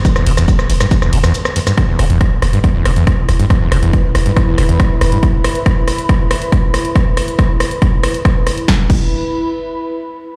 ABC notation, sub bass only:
X:1
M:4/4
L:1/16
Q:1/4=139
K:C
V:1 name="Sub bass" clef=bass
z E,,, E,,, E,,, z E,,, E,,, z2 E,,, E,,, z4 z | z E,,, E,,, E,,, z E,,, E,,, z2 E,,, E,,, z2 E,,, E,,, z | z E,,, E,,, E,,, z E,,, E,,, z2 E,,, E,,, z2 E,,, E,,, z | z16 |
z16 | z16 |]